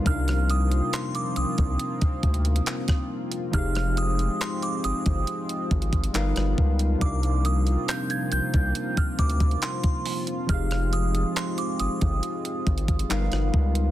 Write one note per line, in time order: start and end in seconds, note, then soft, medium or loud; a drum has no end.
0.00 3.48 C3 medium
0.00 3.50 F3 medium
0.00 3.50 F4 medium
0.05 0.82 C2 loud
0.05 3.49 G3 medium
0.05 3.50 A#3 medium
0.05 3.50 C4 medium
0.05 3.50 D4 medium
0.05 3.51 D#4 medium
0.05 0.51 F6 loud
0.05 kick loud
0.05 closed hi-hat medium
0.09 3.51 A#4 medium
0.09 3.52 F5 medium
0.28 cross-stick medium
0.28 closed hi-hat medium
0.50 0.95 D#6 loud
0.50 closed hi-hat medium
0.72 closed hi-hat medium
0.93 1.15 C6 medium
0.93 clap loud
0.93 closed hi-hat medium
1.15 1.37 D6 medium
1.15 closed hi-hat medium
1.36 1.45 C2 medium
1.36 3.07 D#6 medium
1.36 closed hi-hat medium
1.58 1.77 C2 medium
1.58 kick medium
1.58 closed hi-hat soft
1.79 closed hi-hat medium
2.01 kick loud
2.01 closed hi-hat medium
2.23 2.61 D2 medium
2.23 kick medium
2.23 closed hi-hat soft
2.34 closed hi-hat medium
2.45 closed hi-hat medium
2.56 closed hi-hat medium
2.66 clap loud
2.66 closed hi-hat medium
2.88 kick medium
2.88 cross-stick medium
2.88 closed hi-hat medium
3.32 closed hi-hat medium
3.51 4.29 F1 loud
3.51 6.09 F3 medium
3.51 13.06 F3 medium
3.51 6.12 G#3 medium
3.51 6.12 C4 medium
3.51 6.10 D#4 medium
3.51 13.91 F4 medium
3.51 6.11 G4 medium
3.51 3.99 F6 loud
3.51 kick loud
3.51 closed hi-hat medium
3.57 6.12 G#4 medium
3.57 6.13 F5 medium
3.75 cross-stick medium
3.75 closed hi-hat medium
3.97 4.42 D#6 loud
3.97 closed hi-hat medium
4.19 closed hi-hat medium
4.41 4.61 C6 medium
4.41 clap loud
4.41 closed hi-hat medium
4.62 4.73 D6 medium
4.62 closed hi-hat medium
4.84 4.93 G1 soft
4.84 6.54 D#6 medium
4.84 closed hi-hat medium
5.06 5.25 G1 loud
5.06 kick medium
5.06 closed hi-hat soft
5.27 closed hi-hat medium
5.49 closed hi-hat medium
5.71 6.09 G#1 loud
5.71 kick loud
5.71 closed hi-hat soft
5.82 closed hi-hat medium
5.93 kick loud
5.93 closed hi-hat medium
6.04 closed hi-hat medium
6.14 6.34 G1 loud
6.14 6.99 G3 medium
6.14 7.01 G3 medium
6.14 7.01 B3 medium
6.14 7.01 D#4 medium
6.14 7.02 A#4 medium
6.14 7.02 B4 medium
6.14 7.03 F5 medium
6.14 clap loud
6.14 closed hi-hat medium
6.36 6.55 G1 medium
6.36 cross-stick medium
6.36 closed hi-hat medium
6.58 6.96 C#2 medium
6.58 kick medium
6.79 closed hi-hat medium
6.99 7.77 C2 loud
6.99 10.44 C3 medium
6.99 10.45 G3 medium
6.99 10.46 A#3 medium
6.99 10.46 C4 medium
6.99 10.45 D4 medium
6.99 7.46 D6 loud
6.99 kick loud
6.99 closed hi-hat medium
7.03 10.46 D#4 medium
7.03 10.47 A#4 medium
7.03 10.47 F5 medium
7.23 closed hi-hat medium
7.45 7.60 D#6 loud
7.45 closed hi-hat medium
7.67 closed hi-hat medium
7.88 8.11 G6 loud
7.88 clap loud
7.88 closed hi-hat medium
8.10 8.20 G#6 loud
8.10 closed hi-hat medium
8.32 8.41 C2 medium
8.32 8.99 G6 loud
8.32 closed hi-hat medium
8.54 8.73 C2 medium
8.54 kick medium
8.54 closed hi-hat soft
8.75 closed hi-hat medium
8.97 9.07 F6 loud
8.97 kick loud
8.97 closed hi-hat medium
9.19 9.57 D2 medium
9.19 9.59 D6 medium
9.19 kick medium
9.19 closed hi-hat medium
9.30 closed hi-hat medium
9.40 kick loud
9.40 closed hi-hat medium
9.51 closed hi-hat soft
9.62 10.24 C6 medium
9.62 clap loud
9.62 closed hi-hat medium
9.84 kick medium
9.84 closed hi-hat medium
10.06 open hi-hat medium
10.27 closed hi-hat medium
10.47 11.25 F1 loud
10.47 13.05 F3 medium
10.47 13.07 G#3 medium
10.47 13.07 C4 medium
10.47 13.06 D#4 medium
10.47 13.07 G4 medium
10.47 10.94 F6 loud
10.47 kick loud
10.47 closed hi-hat medium
10.52 13.07 G#4 medium
10.52 13.08 F5 medium
10.71 cross-stick medium
10.71 closed hi-hat medium
10.93 11.38 D#6 medium
10.93 closed hi-hat medium
11.15 closed hi-hat medium
11.36 11.59 C6 medium
11.36 clap loud
11.36 closed hi-hat medium
11.58 11.80 D6 medium
11.58 closed hi-hat medium
11.80 11.89 G1 soft
11.80 13.50 D#6 medium
11.80 closed hi-hat medium
12.01 12.21 G1 loud
12.01 kick medium
12.01 closed hi-hat medium
12.23 closed hi-hat medium
12.45 closed hi-hat medium
12.67 13.05 G#1 medium
12.67 kick loud
12.67 closed hi-hat soft
12.78 closed hi-hat medium
12.88 kick loud
12.88 closed hi-hat medium
12.99 closed hi-hat medium
13.09 13.29 G1 loud
13.09 13.91 F3 medium
13.09 13.91 G3 medium
13.09 13.91 B3 medium
13.09 13.91 D#4 medium
13.09 13.91 A#4 medium
13.09 13.91 B4 medium
13.09 13.91 F5 medium
13.09 clap loud
13.09 closed hi-hat medium
13.32 13.51 G1 medium
13.32 cross-stick medium
13.32 closed hi-hat medium
13.54 13.91 C#2 medium
13.54 kick medium
13.75 closed hi-hat medium